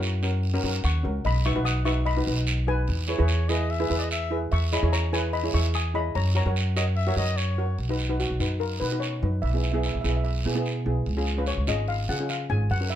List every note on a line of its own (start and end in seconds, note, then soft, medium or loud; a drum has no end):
0.00 0.60 F#2 medium
0.00 0.11 C#4 medium
0.00 0.80 E4 medium
0.00 0.11 F#4 medium
0.00 0.11 A#4 medium
0.00 0.88 C#5 medium
0.00 short guiro medium
0.22 0.41 C#4 medium
0.22 0.41 F#4 medium
0.22 0.42 A#4 medium
0.22 short guiro medium
0.43 long guiro medium
0.54 0.60 C#4 medium
0.54 0.60 F#4 medium
0.54 0.60 A#4 loud
0.63 0.82 F#2 medium
0.63 0.88 C#4 medium
0.63 0.89 F#4 medium
0.63 0.89 A#4 medium
0.84 1.02 D#2 medium
0.84 1.22 F#5 medium
0.84 1.27 C#6 medium
0.84 short guiro medium
1.03 1.23 C#2 medium
1.03 1.24 C#4 medium
1.03 1.25 F#4 medium
1.03 1.25 A#4 medium
1.25 1.53 B1 medium
1.25 1.44 D#5 medium
1.25 1.47 B5 loud
1.25 long guiro medium
1.45 1.52 D#4 medium
1.45 1.52 F#4 medium
1.45 1.52 B4 medium
1.45 1.65 E5 medium
1.45 1.67 C#6 loud
1.45 short guiro medium
1.55 2.23 B1 medium
1.55 1.74 D#4 medium
1.55 1.74 F#4 medium
1.55 1.74 B4 loud
1.65 1.84 F#5 medium
1.65 1.87 D#6 loud
1.65 short guiro medium
1.85 2.04 D#4 medium
1.85 2.04 F#4 medium
1.85 2.05 B4 medium
1.85 1.95 E5 medium
1.85 1.95 C#6 loud
1.85 short guiro medium
2.05 2.63 D#5 medium
2.05 2.70 B5 loud
2.05 long guiro medium
2.17 2.23 D#4 medium
2.17 2.23 F#4 medium
2.17 2.23 B4 medium
2.26 2.84 B1 medium
2.26 2.51 D#4 medium
2.26 2.52 F#4 medium
2.26 2.52 B4 medium
2.47 short guiro medium
2.67 2.88 D#4 medium
2.67 2.88 F#4 medium
2.67 2.88 B4 medium
2.67 3.06 B4 medium
2.67 3.06 G#5 medium
2.87 3.17 E2 medium
2.87 long guiro medium
3.08 3.15 E4 medium
3.08 3.15 G#4 medium
3.08 3.15 B4 medium
3.08 3.51 C#5 medium
3.08 short guiro medium
3.18 3.87 E2 medium
3.18 3.37 E4 loud
3.18 3.37 G#4 medium
3.18 3.37 B4 loud
3.28 short guiro medium
3.49 3.68 E4 medium
3.49 3.68 G#4 medium
3.49 3.68 B4 medium
3.49 3.72 D#5 medium
3.49 short guiro medium
3.70 4.00 E5 medium
3.70 long guiro medium
3.80 3.86 E4 medium
3.80 3.86 G#4 medium
3.80 3.86 B4 medium
3.90 4.48 E2 medium
3.90 4.15 E4 medium
3.90 4.15 G#4 medium
3.90 4.15 B4 loud
3.98 4.02 D5 medium
3.98 4.11 D#5 medium
4.11 4.40 E5 medium
4.11 short guiro medium
4.30 4.51 E4 medium
4.30 4.52 G#4 medium
4.30 4.52 B4 medium
4.52 4.80 E2 medium
4.52 4.71 E5 medium
4.52 4.73 C#6 loud
4.52 long guiro medium
4.72 4.79 E4 medium
4.72 4.79 G#4 medium
4.72 4.79 C#5 medium
4.72 4.91 D#5 medium
4.72 4.94 B5 medium
4.72 short guiro medium
4.83 5.50 E2 medium
4.83 5.01 E4 medium
4.83 5.01 G#4 medium
4.83 5.01 C#5 loud
4.93 5.12 C#5 medium
4.93 5.14 A#5 loud
4.93 short guiro medium
5.13 5.31 E4 medium
5.13 5.31 G#4 medium
5.13 5.32 B4 medium
5.13 5.32 C#5 medium
5.13 5.32 G#5 medium
5.13 short guiro medium
5.33 5.52 D#5 medium
5.33 5.54 B5 medium
5.33 long guiro medium
5.44 5.50 E4 medium
5.44 5.50 G#4 medium
5.44 5.50 C#5 medium
5.54 6.11 E2 medium
5.54 5.78 E4 medium
5.54 5.78 G#4 medium
5.54 5.79 C#5 medium
5.54 5.73 E5 medium
5.54 5.73 C#6 medium
5.74 5.94 G#5 medium
5.74 5.96 D#6 loud
5.74 short guiro medium
5.94 6.15 E4 medium
5.94 6.15 G#4 medium
5.94 6.15 C#5 medium
5.94 6.14 D#5 medium
5.94 6.16 B5 loud
6.15 6.43 F#2 loud
6.15 6.35 C#5 medium
6.15 6.35 A#5 loud
6.15 long guiro medium
6.35 6.42 F#4 medium
6.35 6.42 A#4 medium
6.35 6.42 C#5 medium
6.35 7.55 C#5 medium
6.35 7.55 A#5 medium
6.35 short guiro medium
6.46 7.13 F#2 medium
6.46 6.64 F#4 medium
6.46 6.65 A#4 medium
6.46 6.65 C#5 medium
6.56 short guiro medium
6.76 6.95 F#4 medium
6.76 6.95 A#4 medium
6.76 6.95 C#5 medium
6.76 6.86 D#5 medium
6.76 short guiro medium
6.96 7.16 E5 medium
6.96 long guiro medium
7.07 7.13 F#4 loud
7.07 7.13 A#4 medium
7.07 7.14 C#5 loud
7.16 7.74 F#2 medium
7.16 7.42 F#4 medium
7.16 7.42 A#4 medium
7.16 7.42 C#5 medium
7.16 7.39 D#5 loud
7.37 7.78 C#5 medium
7.37 short guiro medium
7.58 7.79 F#4 medium
7.58 7.79 A#4 medium
7.58 7.79 C#5 medium
7.78 8.26 B1 medium
7.78 long guiro medium
7.89 8.01 D#4 medium
7.89 8.02 F#4 medium
7.89 8.02 B4 medium
7.99 short guiro medium
8.09 8.28 D#4 medium
8.09 8.28 F#4 medium
8.09 8.28 B4 medium
8.20 8.62 F#4 medium
8.20 short guiro medium
8.30 8.39 B1 medium
8.40 8.77 F#2 medium
8.40 8.65 D#4 medium
8.40 8.65 F#4 medium
8.40 8.65 B4 medium
8.40 short guiro medium
8.60 8.81 A#4 medium
8.60 long guiro medium
8.80 9.18 B2 medium
8.80 8.87 D#4 medium
8.80 8.88 F#4 medium
8.80 9.02 B4 medium
8.80 8.88 B4 medium
8.92 9.10 D#4 medium
8.92 9.10 F#4 medium
8.92 9.11 B4 medium
9.00 9.43 C#5 medium
9.00 short guiro medium
9.22 9.41 F#2 medium
9.22 9.41 D#4 medium
9.22 9.41 F#4 soft
9.22 9.41 B4 medium
9.42 9.90 B1 medium
9.42 9.49 E5 medium
9.42 long guiro medium
9.50 9.65 B3 medium
9.50 9.66 E4 medium
9.50 9.55 E5 medium
9.54 9.66 G#4 medium
9.54 9.62 E5 medium
9.63 9.70 E5 medium
9.63 short guiro medium
9.71 9.92 B3 medium
9.71 9.92 E4 medium
9.71 9.92 G#4 medium
9.71 9.77 E5 medium
9.78 9.85 E5 medium
9.83 9.92 E5 medium
9.83 short guiro medium
9.93 10.03 B1 medium
9.93 10.00 E5 medium
10.01 10.41 B1 medium
10.01 10.29 B3 medium
10.01 10.29 E4 medium
10.01 10.29 G#4 medium
10.01 10.08 E5 medium
10.01 short guiro medium
10.09 10.15 E5 medium
10.17 10.23 E5 medium
10.24 10.32 E5 medium
10.24 long guiro medium
10.45 10.82 B2 medium
10.45 10.52 B3 medium
10.45 10.52 E4 medium
10.45 10.52 G#4 medium
10.55 10.74 B3 medium
10.55 10.74 E4 medium
10.55 10.74 G#4 medium
10.66 short guiro medium
10.86 11.05 B1 medium
10.86 11.05 B3 medium
10.86 11.05 E4 medium
10.86 11.05 G#4 medium
11.06 11.54 C#2 medium
11.06 long guiro medium
11.17 11.29 C#4 medium
11.17 11.29 F4 medium
11.17 11.29 G#4 medium
11.26 short guiro medium
11.37 11.56 C#4 medium
11.37 11.56 F4 medium
11.37 11.56 B4 medium
11.46 11.67 C#5 loud
11.46 short guiro medium
11.57 11.67 C#2 medium
11.67 12.05 G#1 medium
11.67 11.93 C#4 medium
11.67 11.93 F4 medium
11.67 11.93 G#4 medium
11.67 11.89 D#5 medium
11.67 short guiro medium
11.88 12.10 F5 medium
11.88 long guiro medium
12.09 12.46 C#3 medium
12.09 12.15 C#4 medium
12.09 12.16 F4 medium
12.09 12.16 G#4 medium
12.09 12.30 F#5 medium
12.20 12.38 C#4 medium
12.20 12.39 F4 medium
12.20 12.39 G#4 medium
12.29 12.51 F5 medium
12.29 short guiro medium
12.50 12.68 G#1 medium
12.50 12.69 C#4 medium
12.50 12.69 F4 medium
12.50 12.69 G#4 medium
12.50 12.59 G#5 loud
12.70 12.95 F#2 medium
12.70 12.92 F#5 loud
12.70 long guiro medium
12.80 12.93 C#4 medium
12.80 12.93 F#4 medium
12.80 12.93 A#4 medium
12.90 12.95 E5 medium
12.90 short guiro medium